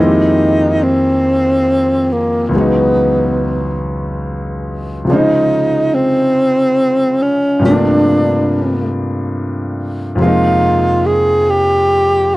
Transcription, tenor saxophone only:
0, 0, Header, 1, 2, 480
1, 0, Start_track
1, 0, Key_signature, -4, "minor"
1, 0, Tempo, 851064
1, 1426, Time_signature, 6, 3, 24, 8
1, 6976, End_track
2, 0, Start_track
2, 0, Title_t, "Tenor saxophone"
2, 0, Program_c, 0, 66
2, 0, Note_on_c, 0, 63, 76
2, 468, Note_on_c, 0, 60, 91
2, 477, Note_off_c, 0, 63, 0
2, 1196, Note_on_c, 0, 58, 72
2, 1204, Note_off_c, 0, 60, 0
2, 1394, Note_off_c, 0, 58, 0
2, 1394, Note_on_c, 0, 58, 46
2, 1439, Note_on_c, 0, 59, 69
2, 1448, Note_off_c, 0, 58, 0
2, 2153, Note_off_c, 0, 59, 0
2, 2879, Note_on_c, 0, 63, 91
2, 3350, Note_on_c, 0, 60, 91
2, 3359, Note_off_c, 0, 63, 0
2, 4072, Note_on_c, 0, 61, 77
2, 4081, Note_off_c, 0, 60, 0
2, 4309, Note_off_c, 0, 61, 0
2, 4316, Note_on_c, 0, 62, 77
2, 5009, Note_off_c, 0, 62, 0
2, 5757, Note_on_c, 0, 65, 79
2, 6239, Note_on_c, 0, 68, 89
2, 6247, Note_off_c, 0, 65, 0
2, 6484, Note_on_c, 0, 67, 103
2, 6493, Note_off_c, 0, 68, 0
2, 6972, Note_off_c, 0, 67, 0
2, 6976, End_track
0, 0, End_of_file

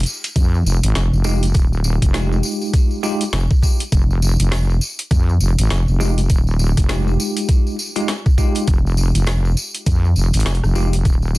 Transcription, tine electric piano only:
0, 0, Header, 1, 2, 480
1, 0, Start_track
1, 0, Key_signature, -4, "minor"
1, 0, Tempo, 594059
1, 1250, Time_signature, 4, 2, 24, 8
1, 9195, End_track
2, 0, Start_track
2, 0, Title_t, "Tine electric piano"
2, 0, Program_c, 0, 4
2, 1010, Note_on_c, 0, 56, 87
2, 1010, Note_on_c, 0, 63, 78
2, 1010, Note_on_c, 0, 65, 77
2, 1010, Note_on_c, 0, 67, 96
2, 1168, Note_off_c, 0, 56, 0
2, 1168, Note_off_c, 0, 63, 0
2, 1168, Note_off_c, 0, 65, 0
2, 1168, Note_off_c, 0, 67, 0
2, 1729, Note_on_c, 0, 67, 83
2, 1730, Note_on_c, 0, 56, 76
2, 1730, Note_on_c, 0, 63, 70
2, 1730, Note_on_c, 0, 65, 70
2, 2426, Note_off_c, 0, 67, 0
2, 2427, Note_off_c, 0, 56, 0
2, 2427, Note_off_c, 0, 63, 0
2, 2427, Note_off_c, 0, 65, 0
2, 2448, Note_on_c, 0, 67, 103
2, 2449, Note_on_c, 0, 56, 95
2, 2449, Note_on_c, 0, 65, 86
2, 2450, Note_on_c, 0, 63, 86
2, 2607, Note_off_c, 0, 56, 0
2, 2607, Note_off_c, 0, 63, 0
2, 2607, Note_off_c, 0, 65, 0
2, 2607, Note_off_c, 0, 67, 0
2, 4848, Note_on_c, 0, 63, 82
2, 4848, Note_on_c, 0, 65, 81
2, 4848, Note_on_c, 0, 67, 95
2, 4849, Note_on_c, 0, 56, 88
2, 5007, Note_off_c, 0, 56, 0
2, 5007, Note_off_c, 0, 63, 0
2, 5007, Note_off_c, 0, 65, 0
2, 5007, Note_off_c, 0, 67, 0
2, 5568, Note_on_c, 0, 56, 77
2, 5568, Note_on_c, 0, 63, 69
2, 5568, Note_on_c, 0, 65, 68
2, 5568, Note_on_c, 0, 67, 86
2, 6266, Note_off_c, 0, 56, 0
2, 6266, Note_off_c, 0, 63, 0
2, 6266, Note_off_c, 0, 65, 0
2, 6266, Note_off_c, 0, 67, 0
2, 6432, Note_on_c, 0, 56, 91
2, 6432, Note_on_c, 0, 63, 77
2, 6432, Note_on_c, 0, 65, 81
2, 6432, Note_on_c, 0, 67, 93
2, 6550, Note_off_c, 0, 63, 0
2, 6550, Note_off_c, 0, 67, 0
2, 6551, Note_off_c, 0, 56, 0
2, 6551, Note_off_c, 0, 65, 0
2, 6770, Note_on_c, 0, 67, 99
2, 6771, Note_on_c, 0, 56, 87
2, 6771, Note_on_c, 0, 63, 82
2, 6771, Note_on_c, 0, 65, 79
2, 6994, Note_off_c, 0, 56, 0
2, 6994, Note_off_c, 0, 63, 0
2, 6994, Note_off_c, 0, 65, 0
2, 6994, Note_off_c, 0, 67, 0
2, 8688, Note_on_c, 0, 63, 78
2, 8689, Note_on_c, 0, 56, 84
2, 8689, Note_on_c, 0, 65, 80
2, 8689, Note_on_c, 0, 67, 99
2, 8847, Note_off_c, 0, 56, 0
2, 8847, Note_off_c, 0, 63, 0
2, 8847, Note_off_c, 0, 65, 0
2, 8847, Note_off_c, 0, 67, 0
2, 9195, End_track
0, 0, End_of_file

